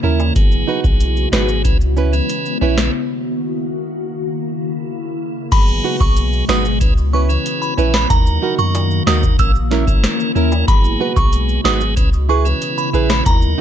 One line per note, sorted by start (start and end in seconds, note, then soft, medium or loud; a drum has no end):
0.00 0.32 D#2 loud
0.00 0.35 C#3 medium
0.00 0.33 E3 medium
0.00 0.33 A#3 medium
0.00 0.19 C#4 medium
0.00 0.33 C#4 medium
0.00 0.35 E4 medium
0.00 0.20 E4 medium
0.00 0.33 A#4 medium
0.04 0.20 A#4 medium
0.20 high timbale medium
0.20 maracas medium
0.36 0.64 G#1 loud
0.36 1.64 B2 medium
0.36 0.80 F#3 medium
0.36 1.64 G#3 medium
0.36 0.80 B3 medium
0.36 1.64 F#4 medium
0.36 0.81 G#4 loud
0.36 kick loud
0.36 closed hi-hat medium
0.36 maracas medium
0.52 maracas medium
0.67 0.84 D#4 medium
0.67 0.84 F#4 medium
0.67 0.85 B4 loud
0.84 1.27 B1 loud
0.84 1.29 F#3 medium
0.84 1.29 B3 medium
0.84 1.29 G#4 medium
0.84 kick medium
0.84 maracas medium
1.00 closed hi-hat medium
1.00 maracas medium
1.17 maracas soft
1.32 1.66 G#1 loud
1.32 1.62 F#3 medium
1.32 1.62 B3 medium
1.32 1.48 D#4 medium
1.32 1.49 F#4 loud
1.32 1.62 G#4 medium
1.32 1.49 B4 loud
1.32 cross-stick medium
1.32 snare loud
1.32 maracas soft
1.49 maracas medium
1.64 2.21 C#2 loud
1.64 2.93 C#3 medium
1.64 1.77 E3 medium
1.64 2.93 B3 medium
1.64 1.77 C#4 medium
1.64 2.93 E4 medium
1.64 1.78 B4 loud
1.64 kick medium
1.64 closed hi-hat medium
1.64 maracas medium
1.81 maracas medium
1.97 2.13 C#4 loud
1.97 2.13 E4 medium
1.97 2.14 B4 loud
1.97 maracas medium
2.13 2.58 E3 medium
2.13 2.58 C#4 medium
2.13 2.58 B4 medium
2.13 maracas medium
2.29 closed hi-hat medium
2.29 maracas medium
2.46 maracas medium
2.61 2.90 A#1 loud
2.61 2.91 E3 medium
2.61 2.91 C#4 medium
2.61 2.78 C#4 medium
2.61 2.78 E4 loud
2.61 2.91 B4 medium
2.61 2.78 B4 loud
2.78 cross-stick medium
2.78 snare loud
2.78 maracas medium
2.94 4.22 D#3 medium
2.94 4.22 A#3 medium
2.94 4.22 F#4 medium
4.23 5.51 C#3 medium
4.23 5.51 A#3 medium
4.23 5.51 E4 medium
5.52 5.80 G#1 loud
5.52 6.80 B2 medium
5.52 5.96 F#3 loud
5.52 6.80 G#3 medium
5.52 5.97 B3 medium
5.52 6.80 F#4 medium
5.52 5.97 G#4 loud
5.52 5.63 B5 loud
5.52 kick loud
5.52 closed hi-hat medium
5.52 crash loud
5.52 maracas medium
5.68 maracas medium
5.84 6.00 D#4 medium
5.84 6.01 F#4 medium
5.84 6.01 B4 medium
6.00 6.43 B1 medium
6.00 6.45 F#3 medium
6.00 6.45 B3 medium
6.00 6.45 G#4 medium
6.00 6.12 C#6 medium
6.00 kick loud
6.00 maracas medium
6.17 closed hi-hat medium
6.17 maracas medium
6.33 maracas soft
6.48 6.83 G#1 loud
6.48 6.78 F#3 medium
6.48 6.79 B3 medium
6.48 6.65 D#4 medium
6.48 6.65 F#4 loud
6.48 6.79 G#4 medium
6.48 6.65 B4 medium
6.48 6.60 D#6 medium
6.48 cross-stick medium
6.48 snare loud
6.65 maracas medium
6.81 7.37 C#2 loud
6.81 8.09 C#3 medium
6.81 6.93 E3 loud
6.81 8.09 B3 medium
6.81 6.94 C#4 medium
6.81 8.09 E4 medium
6.81 6.94 B4 loud
6.81 kick medium
6.81 closed hi-hat medium
6.81 maracas medium
6.98 maracas medium
7.13 7.29 C#4 medium
7.13 7.30 E4 medium
7.13 7.30 B4 medium
7.13 7.25 C#6 medium
7.29 7.74 E3 medium
7.29 7.74 C#4 medium
7.29 7.74 B4 medium
7.29 maracas medium
7.46 closed hi-hat medium
7.46 maracas medium
7.62 7.73 B5 medium
7.62 maracas medium
7.78 8.06 A#1 loud
7.78 8.07 E3 medium
7.78 7.94 C#4 medium
7.78 8.08 C#4 medium
7.78 7.94 E4 loud
7.78 8.08 B4 medium
7.78 7.94 B4 loud
7.78 maracas medium
7.94 8.06 B5 medium
7.94 cross-stick medium
7.94 snare loud
7.94 maracas medium
8.10 8.38 D#2 loud
8.10 9.38 D#3 medium
8.10 8.54 F#3 loud
8.10 10.66 A#3 medium
8.10 8.55 D#4 medium
8.10 9.38 F#4 medium
8.10 8.55 A#4 loud
8.10 8.22 A#5 medium
8.10 kick loud
8.10 closed hi-hat loud
8.10 maracas medium
8.26 maracas medium
8.42 8.58 D#4 medium
8.42 8.59 F#4 loud
8.42 8.59 A#4 medium
8.58 9.01 F#2 medium
8.58 9.03 F#3 medium
8.58 9.03 D#4 medium
8.58 9.03 A#4 medium
8.58 8.70 C#6 medium
8.58 maracas medium
8.75 closed hi-hat medium
8.75 high timbale medium
8.75 maracas medium
8.91 maracas medium
9.07 9.35 D#2 medium
9.07 9.36 F#3 medium
9.07 9.23 D#4 medium
9.07 9.37 D#4 medium
9.07 9.23 F#4 medium
9.07 9.37 A#4 medium
9.07 9.23 A#4 medium
9.07 9.18 D#6 medium
9.07 cross-stick medium
9.07 snare loud
9.23 kick medium
9.23 maracas medium
9.39 9.95 A#1 loud
9.39 10.67 C#3 medium
9.39 9.52 E3 medium
9.39 9.52 C#4 medium
9.39 10.67 E4 medium
9.39 9.52 A#4 loud
9.39 9.85 E6 loud
9.39 kick medium
9.39 closed hi-hat medium
9.39 maracas medium
9.55 maracas medium
9.71 9.87 C#4 medium
9.71 9.87 E4 loud
9.71 9.86 A#4 loud
9.71 snare medium
9.87 10.32 E3 medium
9.87 10.32 C#4 medium
9.87 10.32 A#4 medium
9.87 muted nylon-string guitar stroke soft
9.87 kick loud
9.87 maracas medium
10.04 cross-stick medium
10.04 snare loud
10.04 closed hi-hat medium
10.04 maracas medium
10.20 maracas medium
10.35 10.64 D#2 loud
10.35 10.65 E3 medium
10.35 10.52 C#4 medium
10.35 10.65 C#4 medium
10.35 10.52 E4 medium
10.35 10.66 A#4 medium
10.35 10.52 A#4 medium
10.35 maracas medium
10.52 high timbale medium
10.52 maracas medium
10.68 10.96 G#1 loud
10.68 11.96 B2 medium
10.68 11.12 F#3 loud
10.68 11.96 G#3 medium
10.68 11.12 B3 medium
10.68 11.96 F#4 medium
10.68 11.13 G#4 loud
10.68 10.80 B5 loud
10.68 kick loud
10.68 closed hi-hat loud
10.68 maracas medium
10.84 maracas medium
11.00 11.16 D#4 medium
11.00 11.17 F#4 medium
11.00 11.17 B4 medium
11.16 11.59 B1 medium
11.16 11.61 F#3 medium
11.16 11.61 B3 medium
11.16 11.61 G#4 medium
11.16 11.28 C#6 medium
11.16 kick medium
11.16 maracas medium
11.32 closed hi-hat medium
11.32 maracas medium
11.49 maracas soft
11.64 11.99 G#1 loud
11.64 11.94 F#3 medium
11.64 11.94 B3 medium
11.64 11.81 D#4 medium
11.64 11.81 F#4 medium
11.64 11.95 G#4 medium
11.64 11.81 B4 loud
11.64 11.76 D#6 medium
11.64 cross-stick loud
11.64 snare loud
11.81 maracas medium
11.96 12.53 C#2 loud
11.96 13.25 C#3 medium
11.96 12.09 E3 loud
11.96 13.25 B3 medium
11.96 12.10 C#4 medium
11.96 13.25 E4 medium
11.96 12.10 B4 loud
11.96 kick medium
11.96 closed hi-hat medium
11.96 maracas medium
12.13 maracas medium
12.29 12.45 E4 medium
12.29 12.46 G#4 medium
12.29 12.46 B4 loud
12.29 12.41 C#6 medium
12.45 12.90 E3 medium
12.45 12.90 C#4 medium
12.45 12.90 B4 medium
12.45 maracas medium
12.62 closed hi-hat medium
12.62 maracas medium
12.78 12.89 B5 medium
12.78 maracas medium
12.93 13.22 A#1 loud
12.93 13.23 E3 medium
12.93 13.24 C#4 medium
12.93 13.10 E4 medium
12.93 13.10 G#4 medium
12.93 13.24 B4 medium
12.93 13.10 B4 loud
12.93 maracas medium
13.10 13.22 B5 medium
13.10 cross-stick loud
13.10 snare loud
13.10 maracas medium
13.25 13.54 D#2 loud
13.25 13.61 D#3 medium
13.25 13.61 F#3 loud
13.25 13.61 A#3 medium
13.25 13.61 D#4 medium
13.25 13.61 F#4 medium
13.25 13.61 A#4 loud
13.25 13.38 A#5 medium
13.25 kick loud
13.25 closed hi-hat loud
13.25 maracas medium
13.42 maracas medium